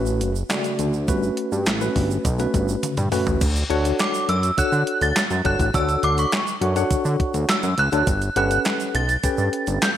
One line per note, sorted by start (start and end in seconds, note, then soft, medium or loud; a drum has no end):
0.00 0.22 A1 loud
0.00 0.31 A3 medium
0.00 0.31 C#4 medium
0.00 0.31 F#4 medium
0.00 0.32 B4 loud
0.06 shaker medium
0.21 0.43 F#1 loud
0.21 closed hi-hat medium
0.21 shaker soft
0.35 shaker medium
0.50 0.93 C#3 medium
0.50 0.93 A3 medium
0.50 0.94 F#4 medium
0.50 0.94 D5 medium
0.50 snare loud
0.50 clap loud
0.50 closed hi-hat loud
0.50 shaker medium
0.64 closed hi-hat medium
0.64 shaker soft
0.79 1.10 D2 medium
0.79 closed hi-hat medium
0.79 shaker medium
0.93 shaker soft
1.08 1.31 G1 loud
1.08 1.62 A3 medium
1.08 1.62 C#4 medium
1.08 1.63 F#4 medium
1.08 1.63 B4 medium
1.08 kick loud
1.08 closed hi-hat medium
1.08 shaker medium
1.23 shaker soft
1.37 closed hi-hat medium
1.52 1.68 G2 medium
1.52 shaker medium
1.66 1.89 A1 medium
1.66 snare loud
1.66 clap medium
1.66 closed hi-hat loud
1.66 shaker medium
1.80 2.24 A3 medium
1.80 2.24 C#4 medium
1.80 2.24 F#4 medium
1.80 2.25 B4 medium
1.80 shaker medium
1.96 2.18 G1 medium
1.96 kick medium
1.96 open hi-hat medium
1.96 shaker soft
2.11 shaker medium
2.25 2.47 B1 medium
2.25 kick loud
2.25 closed hi-hat medium
2.25 shaker medium
2.39 2.93 A3 medium
2.39 2.93 C#4 medium
2.39 2.94 F#4 medium
2.39 2.94 B4 loud
2.39 closed hi-hat medium
2.39 shaker soft
2.54 2.76 G1 loud
2.54 kick medium
2.54 closed hi-hat medium
2.54 shaker soft
2.69 shaker medium
2.83 closed hi-hat loud
2.83 high tom medium
2.83 shaker medium
2.97 3.09 G2 loud
2.97 closed hi-hat soft
2.97 mid tom medium
2.97 shaker soft
3.11 3.41 A3 medium
3.11 3.41 C#4 medium
3.11 3.41 F#4 loud
3.11 3.41 B4 loud
3.11 mid tom medium
3.11 open hi-hat medium
3.11 shaker medium
3.26 3.38 A1 loud
3.26 floor tom medium
3.26 shaker soft
3.41 3.64 D2 loud
3.41 kick loud
3.41 closed hi-hat medium
3.41 crash loud
3.41 shaker medium
3.56 closed hi-hat soft
3.56 shaker medium
3.70 3.93 D2 loud
3.70 4.35 D4 loud
3.70 4.35 F#4 loud
3.70 4.35 A4 loud
3.70 4.35 C#5 loud
3.70 4.36 F#5 loud
3.70 closed hi-hat medium
3.85 closed hi-hat medium
3.85 shaker medium
3.99 4.30 D6 loud
3.99 snare loud
3.99 clap medium
3.99 closed hi-hat medium
3.99 shaker medium
4.14 closed hi-hat soft
4.14 shaker medium
4.29 4.51 F#2 loud
4.29 4.59 E6 medium
4.29 closed hi-hat medium
4.43 closed hi-hat medium
4.43 shaker medium
4.57 4.64 D3 soft
4.57 5.23 D4 medium
4.57 5.23 F#4 medium
4.57 5.23 A4 medium
4.57 5.23 C#5 medium
4.57 5.23 F#5 loud
4.57 4.99 F#6 loud
4.57 kick loud
4.57 closed hi-hat loud
4.57 shaker medium
4.72 4.84 D3 medium
4.72 shaker soft
4.87 closed hi-hat medium
5.01 5.13 D2 medium
5.01 5.43 A6 loud
5.01 closed hi-hat soft
5.01 shaker medium
5.16 snare loud
5.16 clap loud
5.16 closed hi-hat loud
5.16 shaker medium
5.30 5.42 F#2 medium
5.30 closed hi-hat soft
5.30 shaker medium
5.45 5.56 G1 loud
5.45 5.67 D4 medium
5.45 5.67 F#4 medium
5.45 5.67 A4 medium
5.45 5.67 C#5 medium
5.45 5.67 F#5 medium
5.45 5.76 F#6 loud
5.45 kick loud
5.45 closed hi-hat medium
5.59 5.71 A1 loud
5.59 kick loud
5.59 closed hi-hat medium
5.59 shaker soft
5.74 5.97 D2 medium
5.74 6.39 D4 medium
5.74 6.39 F#4 medium
5.74 6.39 A4 medium
5.74 6.39 C#5 medium
5.74 6.40 F#5 medium
5.74 6.05 E6 medium
5.74 kick loud
5.74 closed hi-hat loud
5.74 shaker medium
5.89 closed hi-hat soft
5.89 shaker medium
6.03 6.26 D2 loud
6.03 6.19 D6 loud
6.03 closed hi-hat medium
6.18 7.53 C#6 medium
6.18 closed hi-hat medium
6.18 shaker medium
6.32 snare loud
6.32 clap medium
6.32 closed hi-hat loud
6.32 shaker medium
6.47 closed hi-hat soft
6.47 shaker medium
6.61 6.84 F#2 medium
6.61 6.72 D4 medium
6.61 6.72 F#4 medium
6.61 6.72 A4 medium
6.61 6.72 C#5 medium
6.61 6.73 F#5 medium
6.61 closed hi-hat medium
6.76 7.63 D4 medium
6.76 7.63 F#4 medium
6.76 7.63 A4 medium
6.76 7.63 C#5 medium
6.76 7.63 F#5 loud
6.76 closed hi-hat medium
6.76 shaker medium
6.91 6.97 D3 medium
6.91 kick loud
6.91 closed hi-hat loud
6.91 shaker medium
7.05 7.16 D3 medium
7.05 shaker medium
7.20 kick medium
7.20 closed hi-hat medium
7.34 7.46 D2 medium
7.34 closed hi-hat soft
7.34 shaker medium
7.49 7.79 E6 medium
7.49 snare loud
7.49 clap loud
7.49 closed hi-hat loud
7.49 shaker medium
7.63 7.75 F#2 medium
7.63 closed hi-hat soft
7.63 shaker medium
7.78 7.89 C#2 loud
7.78 8.36 F#6 medium
7.78 closed hi-hat medium
7.92 8.04 D2 loud
7.92 8.07 D4 medium
7.92 8.07 F#4 medium
7.92 8.07 A4 medium
7.92 8.07 C#5 medium
7.92 8.08 A5 medium
7.92 closed hi-hat medium
7.92 shaker soft
8.07 8.30 G1 medium
8.07 kick loud
8.07 closed hi-hat loud
8.07 shaker medium
8.22 closed hi-hat soft
8.22 shaker soft
8.36 8.59 G1 loud
8.36 9.01 C#4 medium
8.36 9.01 G4 medium
8.36 9.01 A4 medium
8.36 9.02 B4 medium
8.36 9.02 F#5 loud
8.36 8.91 F#6 medium
8.36 closed hi-hat medium
8.51 closed hi-hat medium
8.51 shaker medium
8.65 snare loud
8.65 clap medium
8.65 closed hi-hat medium
8.65 shaker medium
8.80 closed hi-hat soft
8.80 shaker medium
8.95 9.17 B1 medium
8.95 9.85 A6 loud
8.95 closed hi-hat medium
9.09 closed hi-hat soft
9.09 shaker medium
9.24 9.30 G2 medium
9.24 9.89 C#4 medium
9.24 9.89 G4 medium
9.24 9.89 A4 medium
9.24 9.89 B4 medium
9.24 9.89 G5 medium
9.24 kick loud
9.24 closed hi-hat loud
9.24 shaker medium
9.38 9.49 G2 medium
9.38 shaker medium
9.53 closed hi-hat medium
9.67 9.79 G1 loud
9.67 closed hi-hat soft
9.67 shaker medium
9.82 9.97 G6 medium
9.82 snare loud
9.82 clap loud
9.82 closed hi-hat loud
9.82 shaker medium